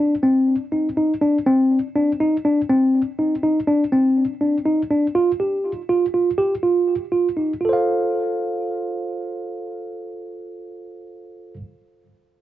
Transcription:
Already playing: D4
0.23 C4
0.72 D#4
0.97 D#4
1.22 D4
1.47 C4
1.95 D4
2.20 D#4
2.45 D4
2.69 C4
3.19 D#4
3.43 D#4
3.67 D4
3.92 C4
4.41 D4
4.66 D#4
4.90 D4
5.15 F4
5.40 G4
5.89 F4
6.14 F4
6.38 G4
6.63 F4
7.12 F4
7.37 D#4
7.61 F4
7.65 A4
7.69 C5 F5

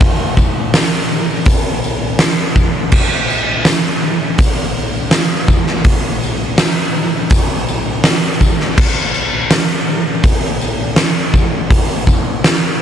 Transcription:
0.00 kick, open hi-hat, tambourine
0.37 kick, tambourine
0.74 snare, open hi-hat, tambourine
1.45 kick, open hi-hat, tambourine
1.84 tambourine
2.19 snare, open hi-hat, tambourine
2.56 kick, tambourine
2.92 kick, crash, tambourine
3.30 tambourine
3.65 snare, open hi-hat, tambourine
4.04 tambourine
4.38 kick, open hi-hat, tambourine
5.11 snare, open hi-hat, tambourine
5.48 kick, tambourine
5.67 snare
5.84 kick, open hi-hat, tambourine
6.24 tambourine
6.58 snare, open hi-hat, tambourine
6.96 tambourine
7.30 kick, open hi-hat, tambourine
7.68 tambourine
8.04 snare, open hi-hat, tambourine
8.41 kick, tambourine
8.60 snare
8.78 kick, tambourine, crash
9.14 tambourine
9.51 snare, open hi-hat, tambourine
9.88 tambourine
10.23 kick, open hi-hat, tambourine
10.61 tambourine
10.96 snare, open hi-hat, tambourine
11.34 kick, tambourine
11.70 kick, open hi-hat, tambourine
12.07 kick, tambourine
12.44 snare, open hi-hat, tambourine

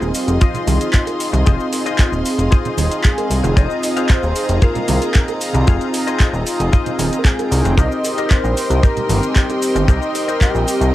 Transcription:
Already playing: C4 D#4 F4 G#4 D#5 F5 C6
0.01 D#1, shaker
0.15 G4, open hi-hat, shaker
0.28 F1, muted clean electric guitar stroke, closed hi-hat, shaker
0.41 F4 G#4 C5 D#5, kick, closed hi-hat, shaker
0.54 closed hi-hat, low conga, shaker
0.67 C2, open hi-hat, high conga, shaker
0.81 closed hi-hat, shaker
0.93 kick, clap, closed hi-hat, shaker
1.07 closed hi-hat, high bongo, shaker
1.20 open hi-hat, shaker
1.33 C2, muted clean electric guitar stroke, closed hi-hat, high conga, shaker
1.46 F1 C4 D#4 F4 G#4 C5 D#5, kick, closed hi-hat, shaker
1.60 shaker
1.73 open hi-hat, high bongo, shaker
1.86 F4 G#4 C5 D#5, closed hi-hat, shaker
1.98 kick, clap, closed hi-hat, shaker
2.12 D#1, shaker
2.26 open hi-hat, shaker
2.38 F1, muted clean electric guitar stroke, closed hi-hat, shaker
2.51 F4 G#4 C5 D#5, kick, closed hi-hat, shaker
2.65 closed hi-hat, low conga, shaker
2.77 D#1, open hi-hat, high conga, shaker
2.91 closed hi-hat, shaker
3.04 G#4, kick, clap, closed hi-hat, shaker
3.18 closed hi-hat, high bongo, shaker
3.30 C2, open hi-hat, shaker
3.44 F1, muted clean electric guitar stroke, closed hi-hat, high conga, shaker
3.56 F1 C4 D#4 F4 G#4 C5 D#5 A#5, kick, closed hi-hat, shaker
3.71 shaker
3.83 open hi-hat, high bongo, shaker
3.97 F4 G#4 C5 F5, closed hi-hat, shaker
4.09 C5, kick, clap, closed hi-hat, shaker
4.23 D#1, shaker
4.36 open hi-hat, shaker
4.49 F1, muted clean electric guitar stroke, closed hi-hat, shaker
4.62 F4 G#4 A#4 C5 F5, kick, closed hi-hat, shaker
4.75 closed hi-hat, low conga, shaker
4.88 C2, open hi-hat, high conga, shaker
5.02 closed hi-hat, shaker
5.14 kick, clap, closed hi-hat, shaker
5.28 closed hi-hat, high bongo, shaker
5.41 open hi-hat, shaker
5.53 C2, muted clean electric guitar stroke, closed hi-hat, high conga, shaker
5.67 F1 C4 D#4 F4 G#4 C5 D#5 F5, kick, closed hi-hat, shaker
5.81 closed hi-hat, shaker
5.94 open hi-hat, high bongo, shaker
6.07 F4 G#4 C5 D#5, closed hi-hat, shaker
6.20 kick, clap, closed hi-hat, shaker
6.33 D#1, shaker
6.47 open hi-hat, shaker
6.60 F1, muted clean electric guitar stroke, closed hi-hat, shaker
6.72 F4 G#4 C5 D#5, kick, closed hi-hat, shaker
6.86 closed hi-hat, low conga, shaker
6.99 D#1, open hi-hat, high conga, shaker
7.12 C4 D#4 F4 G#4 G5, closed hi-hat, shaker
7.19 A#4
7.25 G#4, kick, clap, closed hi-hat, shaker
7.39 closed hi-hat, high bongo, shaker
7.51 C2, open hi-hat, shaker
7.65 F1, muted clean electric guitar stroke, closed hi-hat, high conga, shaker
7.77 C2 C4 D#4 G4 A#4 C5 D#5 G5 C6, kick, closed hi-hat, shaker
7.92 shaker
8.04 open hi-hat, high bongo, shaker
8.18 G4 A#4 C5 D#5, closed hi-hat, shaker
8.30 C5, kick, clap, closed hi-hat, shaker
8.44 A#1, shaker
8.57 open hi-hat, shaker
8.70 C2, muted clean electric guitar stroke, closed hi-hat, shaker
8.83 G4 A#4 C5 D#5, kick, closed hi-hat, shaker
8.97 closed hi-hat, low conga, shaker
9.09 G1, open hi-hat, high conga, shaker
9.23 closed hi-hat, shaker
9.29 G#4
9.36 G4, kick, clap, closed hi-hat, shaker
9.50 closed hi-hat, high bongo, shaker
9.62 open hi-hat, shaker
9.75 G1, muted clean electric guitar stroke, closed hi-hat, high conga, shaker
9.87 C2 C4 D#4 G4 A#4 C5 D#5, kick, closed hi-hat, shaker
10.02 shaker
10.15 open hi-hat, high bongo, shaker
10.28 G4 A#4 C5 D#5, closed hi-hat, shaker
10.41 G4, kick, clap, closed hi-hat, shaker
10.54 A#1, shaker
10.68 open hi-hat, shaker
10.81 C2, muted clean electric guitar stroke, closed hi-hat, shaker

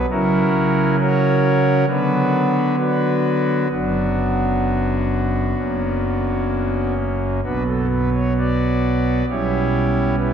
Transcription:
0.10 C#3 F#3 C#4 E4 F#4 A#4
0.99 F#4 A#4 C#5
1.88 D3 F#3 B3 D4 F#4 B4
2.79 D4 F#4 B4
3.71 F#1 F#2 F#3 B3 D4 F#4
5.58 F#1 F#2 F#3 A#3 C#4
7.43 B1 B2 F#3 B3 D4 F#4 B4
7.67 A4
7.91 B4
8.14 C#5
8.38 F#4 B4 D5
9.28 B1 B2 G3 C#4 E4 G4 C#5
10.18 E4 G4 B4

